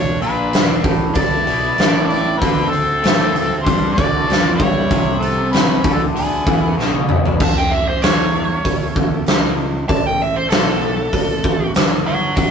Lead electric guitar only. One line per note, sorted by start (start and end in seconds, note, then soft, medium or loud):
0.00 0.19 D4 medium
0.22 0.81 D4 medium
1.14 2.05 E4 medium
2.06 2.39 E4 medium
2.39 2.68 C4 medium
2.69 3.65 C4 medium
3.63 3.94 D4 medium
3.92 4.53 F#4 medium
4.56 5.16 E4 medium
5.21 5.51 B3 medium
5.53 5.92 C#4 medium
5.95 6.01 B3 medium
6.16 6.74 B3 medium
7.43 7.58 A5 medium
7.58 7.72 G5 medium
7.71 7.87 E5 medium
7.89 8.02 C5 medium
8.02 9.23 C#5 medium
9.89 10.06 A5 loud
10.06 10.21 G5 medium
10.22 10.36 E5 medium
10.36 10.50 C5 medium
10.50 11.71 A4 medium
12.06 12.35 C#5 medium
12.06 12.37 F#5 medium
12.36 12.51 C#5 medium
12.36 12.51 F#5 medium